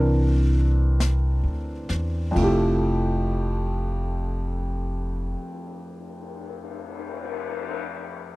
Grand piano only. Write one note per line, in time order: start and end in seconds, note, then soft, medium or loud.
0.00 2.36 E3 soft
0.00 2.38 C4 soft
0.00 2.39 D4 soft
0.00 2.41 A#4 medium
2.31 5.33 F2 medium
2.31 5.37 F3 soft
2.38 5.40 A3 medium
2.38 5.43 E4 soft
2.43 5.45 G4 medium